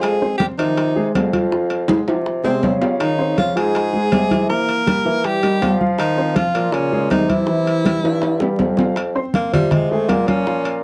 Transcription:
Already playing: bassoon F2, upright piano F4 F5
0.01 trombone G#3, tenor saxophone G#4, high bongo, high conga, high timbale
0.22 upright piano C4 C5, high bongo, high conga
0.38 trombone G3, tenor saxophone G4, high bongo, high conga, high timbale, low timbale
0.58 bassoon C3, trombone D#3, upright piano F3 F4, tenor saxophone D#4, high bongo, high conga, high timbale
0.77 high bongo, high conga, high timbale
0.96 upright piano G#3 G#4, high conga
1.15 bassoon F2, high bongo, low bongo, high conga, high timbale, low timbale
1.33 upright piano F3 F4, high bongo, high conga, high timbale
1.52 upright piano F3 F4, high bongo, high conga
1.70 high bongo, high conga, high timbale
1.88 upright piano G#3 G#4, high bongo, high conga, high timbale
2.07 bassoon C3, upright piano F3 F4, high bongo, high conga, high timbale
2.26 high bongo, high conga
2.44 trombone C3, bassoon C3, upright piano G#3 G#4, tenor saxophone C4, high conga, low timbale
2.63 bassoon C#3, high bongo, low bongo, high conga, low timbale
2.81 upright piano F4 F5, high bongo, low timbale
3.00 trombone D#3, tenor saxophone D#4, high bongo, high conga, high timbale
3.19 upright piano C4 C5, high bongo, high conga
3.38 trombone F3, tenor saxophone F4, high bongo, high conga, high timbale, low timbale
3.55 bassoon G#2, upright piano F3 F4, trombone G#3, tenor saxophone G#4, high bongo, high conga, high timbale
3.75 high bongo, high conga, high timbale
3.93 upright piano G#3 G#4, high conga
4.11 bassoon C3, high bongo, low bongo, high conga, high timbale, low timbale
4.31 upright piano E3 E4, high bongo, high conga, high timbale
4.49 upright piano E3 E4, trombone A#3, tenor saxophone A#4, high bongo, high conga
4.69 high bongo, high conga, high timbale
4.86 upright piano G3 G4, high bongo, high conga, high timbale, low timbale
5.05 upright piano E3 E4, bassoon E3, high bongo, high conga
5.24 trombone G3, tenor saxophone G4, high bongo, high conga, high timbale
5.43 bassoon D#3, upright piano G3 G4, high conga, high timbale
5.62 bassoon F3, high bongo, low bongo, high conga, high timbale, low timbale
5.80 upright piano F4 F5, high bongo, high conga
5.99 trombone D#3, tenor saxophone D#4, high bongo, high conga, high timbale
6.17 upright piano C4 C5, high bongo, high conga
6.35 trombone F3, tenor saxophone F4, high bongo, high conga, high timbale, low timbale
6.55 bassoon A#2, upright piano F3 F4, high bongo, high conga, high timbale
6.72 trombone C#3, tenor saxophone C#4, high bongo, high conga, high timbale
6.92 upright piano G#3 G#4, high conga
7.10 bassoon C3, trombone D#3, tenor saxophone D#4, high bongo, low bongo, high conga, high timbale, low timbale
7.29 trombone E3, upright piano E3 E4, tenor saxophone E4, high bongo, high conga, high timbale
7.47 upright piano E3 E4, high bongo, high conga
7.66 high bongo, high conga, high timbale
7.85 upright piano G3 G4, high bongo, high conga, high timbale, low timbale
8.03 bassoon G2, upright piano E3 E4, high bongo, high conga, high timbale
8.22 high bongo, high conga, high timbale
8.40 bassoon G2, upright piano G3 G4, high bongo, high conga, low timbale
8.59 bassoon F2, high conga, low timbale
8.77 upright piano F4 F5, low bongo, high conga, low timbale
8.96 high bongo, high conga, high timbale
9.15 upright piano C4 C5 C6, high bongo, high conga
9.34 tenor saxophone A#3, high bongo, high conga, high timbale, low timbale
9.52 bassoon C3, upright piano F3 F4 F5, tenor saxophone G3, high bongo, high conga, low conga, high timbale
9.71 tenor saxophone G#3, high bongo, high conga, low conga, high timbale
9.90 upright piano G#3 G#4 G#5, tenor saxophone A3, high conga
10.08 bassoon A#2, tenor saxophone A#3, high bongo, low bongo, high conga, high timbale, low timbale
10.27 upright piano F3 F4 F5, tenor saxophone C#4, high bongo, high conga, high timbale
10.46 upright piano F3 F4 F5, high bongo, high conga
10.65 high bongo, high conga, high timbale

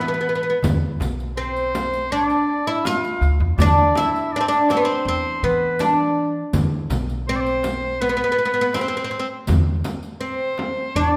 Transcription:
Already playing: upright bass E3, oboe B4
0.01 oud B3
0.08 oud B3
0.14 oud B3
0.21 oud B3
0.26 oud B3, darbuka ka
0.35 oud B3
0.43 oud B3
0.50 oud B3
0.63 upright bass E2, riq, darbuka dum, frame drum
1.00 upright bass B1, riq, darbuka tek, frame drum
1.19 riq, darbuka ka
1.37 oud C4, oboe C5, darbuka ka
1.56 riq, darbuka ka
1.75 riq, darbuka tek, frame drum
1.94 riq
2.12 oud D4, oboe D5, riq, darbuka ka
2.30 riq, darbuka ka
2.67 oud E4, oboe E5
2.85 oud F4, oboe F5, riq, darbuka tek, frame drum
3.04 riq, darbuka ka
3.21 upright bass D2, riq, darbuka tek
3.40 upright bass E2, darbuka ka
3.58 upright bass E2, oud D4, oboe D5, riq, frame drum, darbuka dum
3.96 oud E4, oboe E5, riq, frame drum
4.15 riq, darbuka ka
4.32 oud D4, oboe D5, darbuka ka
4.41 oud C4
4.48 oud D4, oboe D5, darbuka ka
4.52 riq
4.69 oud C4, oboe C5, riq, darbuka tek, frame drum
4.77 oud B3
4.85 oud C4
5.05 upright bass E2, oud C4, oboe C5
5.25 darbuka ka
5.43 upright bass E3, oud B3, oboe B4
5.79 oud D4, oboe D5, riq, darbuka tek, frame drum
6.53 upright bass E2, riq, darbuka dum, frame drum
6.90 upright bass B1, riq, darbuka tek, frame drum
7.09 riq, darbuka ka
7.27 oud C4, oboe C5, darbuka ka
7.36 oboe D5
7.41 oboe C5
7.46 riq
7.63 riq, darbuka tek, frame drum
8.01 oud B3, oboe B4
8.09 oud B3
8.17 oud B3, darbuka ka
8.24 oud B3
8.32 oud B3
8.39 oud B3
8.45 oud B3
8.54 oud B3
8.61 oud B3
8.73 oud C4, oboe C5, riq, darbuka tek, frame drum
8.81 oud C4
8.88 oud C4
8.97 oud C4
9.04 oud C4
9.11 oud C4
9.19 oud C4
9.47 upright bass E2, riq, darbuka dum, frame drum
9.84 riq, darbuka tek, frame drum
10.03 riq, darbuka ka
10.21 oud C4, oboe C5, darbuka ka
10.39 darbuka ka
10.58 darbuka tek, frame drum
10.96 upright bass E2, oud D4, oboe D5

